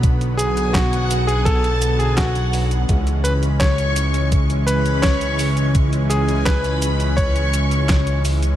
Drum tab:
HH |xxxxxxxxxxxxxxox|xxxxxxxxxxxxxxox|xxxxxxxxxxxxxxox|
SH |xxxxxxxxxxxxxxxx|xxxxxxxxxxxxxxxx|xxxxxxxxxxxxxxxx|
CP |----x-------x---|----x-------x---|----x-------x---|
SD |----o-------o---|----o-------o---|----o-------o---|
BD |o---o---o---o---|o---o---o---o---|o---o---o---o---|